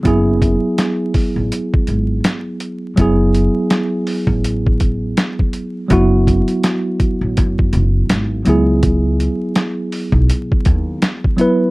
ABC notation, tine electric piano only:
X:1
M:4/4
L:1/8
Q:"Swing 16ths" 1/4=82
K:F#m
V:1 name="Tine electric piano"
[F,B,EG]8 | [F,B,EG]8 | [F,B,EF]6- [F,B,EF] [F,B,EG]- | [F,B,EG]6- [F,B,EG] [F,B,EB] |]